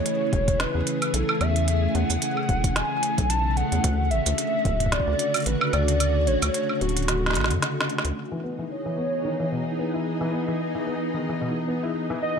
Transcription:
Already playing: C#3 E3 A3 G#4 C#5
0.06 closed hi-hat
0.33 E1, kick, closed hi-hat
0.48 kick, closed hi-hat
0.59 B4, snare, closed hi-hat
0.75 E2
0.87 closed hi-hat
1.02 closed hi-hat, high woodblock
1.14 B1 A4, closed hi-hat
1.29 high woodblock
1.41 E2 E5, closed hi-hat, high woodblock
1.56 closed hi-hat
1.68 closed hi-hat
1.95 E2 F#5, closed hi-hat
2.10 E2, closed hi-hat, shaker
2.22 closed hi-hat
2.37 high woodblock
2.49 E1, kick, closed hi-hat
2.64 kick, closed hi-hat
2.76 G#5, snare, closed hi-hat
3.03 closed hi-hat
3.18 B1, kick, closed hi-hat
3.30 A5, closed hi-hat
3.57 F#5, closed hi-hat
3.72 E2, closed hi-hat
3.84 D2 D3 F#4, kick, closed hi-hat
4.11 A1 E5, closed hi-hat
4.26 D2, closed hi-hat, shaker
4.38 closed hi-hat
4.65 D1, kick, closed hi-hat
4.80 kick, closed hi-hat
4.86 kick
4.92 D5, kick, snare, closed hi-hat
5.00 kick
5.07 D2
5.19 closed hi-hat
5.34 closed hi-hat, high woodblock
5.36 closed hi-hat
5.40 closed hi-hat
5.42 closed hi-hat
5.44 B4, closed hi-hat
5.46 A1, closed hi-hat
5.61 high woodblock
5.73 D2 D5, closed hi-hat, high woodblock
5.88 closed hi-hat
6.00 closed hi-hat, high woodblock
6.27 A1 C#5, closed hi-hat
6.42 D2, closed hi-hat, high woodblock, shaker
6.54 closed hi-hat
6.69 high woodblock
6.81 D1 F#4, closed hi-hat
6.89 closed hi-hat
6.97 closed hi-hat
7.02 closed hi-hat
7.08 snare, closed hi-hat
7.26 snare
7.30 snare
7.33 A1, snare, closed hi-hat
7.37 snare
7.40 snare
7.44 snare
7.48 F#2, snare, closed hi-hat
7.52 snare
7.62 snare, closed hi-hat
7.81 snare
7.89 closed hi-hat
7.98 snare
8.05 D2, closed hi-hat
8.16 E3 B3 D#4 G#4 D#5
8.32 E3
8.44 B3
8.59 E3
8.71 C#5
8.86 E3
8.98 B3
9.25 D#3
9.40 E3
9.52 B2
9.79 B3
9.94 E4
10.21 E3
10.33 B3
10.48 E3
10.75 E3
10.87 B3
11.14 D#3
11.29 E3
11.41 B2
11.68 B3
11.83 E4
12.10 E3
12.22 B3 D#5

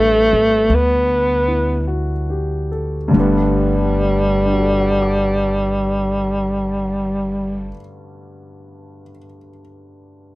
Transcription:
Already playing: A1 G3 A3 B3 D4
0.33 G#1
0.70 D2
0.75 B3
1.47 E4
1.87 F#4
2.30 G4
2.72 A4
3.08 G2 D3
3.13 G1 G3 A3
3.18 G3 B3
4.45 D4
4.52 F#4
4.61 A4
4.70 D5
4.80 F#5
4.91 A5
5.02 D6

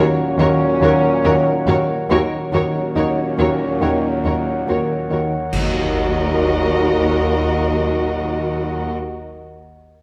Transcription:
Already playing: D#2 A#2 D#3 F#3 A#3 C#4 A#4 C#5 F#5
0.38 D#2 D#3 F#4 A#4 C#5
0.81 D#2 D#3 F#4 A#4 C#5
1.24 D#2 D#3 F#4 A#4 C#5
1.67 D#2 D#3 F#4 A#4 C#5
2.09 D#2 A#2 D#3 F#3 A#3 C#4 F#4 A#4 C#5 F#5
2.52 D#2 D#3 F#4 A#4 C#5
2.96 D#2 D#4 F#4 A#4 C#5
3.38 D#2 D#3 F#4 A#4 C#5
3.81 D#2 D#3 F#4 A#4 C#5
4.24 D#2 D#3 F#4 A#4 C#5
4.67 D#2 D#3 F#4 A#4 C#5
5.10 D#2 D#3 F#4 A#4 C#5
5.52 D#2 A#2 F#3 A#3 D#4 F#4 A#4 D#5 F#5, concert bass drum, crash

